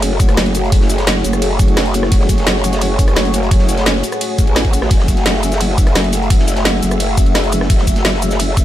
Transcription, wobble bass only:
Already playing: F#1
0.37 F#1
1.25 F#1
2.12 F#1
2.29 F#1
3.16 F#1
4.39 A1
4.91 F#1
5.08 F#1
5.95 F#1
6.83 F#1
7.70 F#1
7.87 F#1

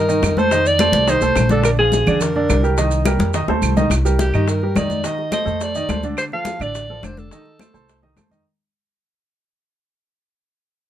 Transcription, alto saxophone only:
Already playing: A#4
0.38 C5
0.67 D5
1.10 C5
1.52 A4
1.65 A#4
1.79 G#4
2.21 A#4
4.21 G4
4.48 A#4
4.77 D5
5.06 D#5
5.33 D#5
5.63 D5
6.18 C5
6.33 F5
6.63 D5
7.05 C5
7.19 A4

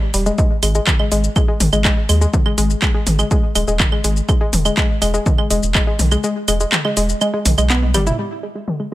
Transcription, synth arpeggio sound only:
0.14 G3
0.26 G#3
0.38 G#3
0.63 G#3
0.75 G#3
0.99 G#3
1.12 G#3
1.36 G#3
1.48 G#3
1.73 G#3
1.85 G#3
2.09 G#3
2.21 G#3
2.46 G#3
2.58 G#3
2.82 G#3
2.94 G#3
3.19 G#3
3.31 G#3
3.55 G#3
3.68 G#3
3.92 G#3
4.04 G#3
4.29 G#3
4.41 G#3
4.65 G#3
4.77 G#3
5.02 G#3
5.14 G#3
5.38 G#3
5.51 G#3
5.75 G#3
5.87 G#3
6.12 G#3
6.24 G#3
6.48 G#3
6.60 G#3
6.85 G#3
6.97 G#3
7.21 G#3
7.34 G#3
7.58 G#3
7.70 B3
7.95 G3
8.07 E4
8.19 G#3
8.43 G#3
8.55 G#3
8.80 G#3

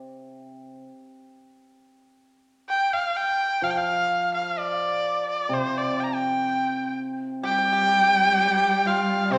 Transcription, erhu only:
2.69 G5
2.93 F5
3.16 G5
3.63 F5
3.70 G5
3.77 F5
4.34 F5
4.58 D5
5.30 D5
5.53 C5
5.77 D5
6.00 G5 A#5
6.15 G5
7.45 G5
8.87 F5
9.32 C5

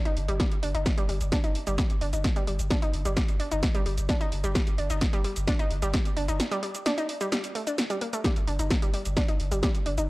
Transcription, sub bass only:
0.05 G1
0.17 G1
0.28 G1
0.63 G1
0.75 G1
0.98 G1
1.09 G1
1.21 G1
1.44 G1
1.67 G1
1.90 G1
2.01 G1
2.13 G1
2.47 G1
2.59 G1
2.82 G1
2.94 G1
3.05 G1
3.28 G1
3.51 G1
3.75 G1
3.86 G1
3.98 G1
4.32 G1
4.44 G1
4.67 G1
4.78 G1
4.90 G1
5.13 G1
5.36 G1
5.59 G1
5.71 G1
5.82 G1
6.17 G1
6.28 G1
8.36 G1
8.47 G1
8.59 G1
8.82 G1
9.05 G1
9.28 G1
9.40 G1
9.52 G1
9.86 G1
9.98 G1

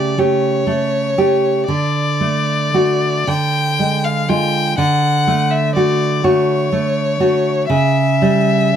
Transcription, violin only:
Already playing: D5
0.19 C#5
1.68 D5
3.28 G5
4.04 F5
4.29 G5
4.78 F#5
5.51 E5
5.75 D5
6.24 C#5
7.69 E5

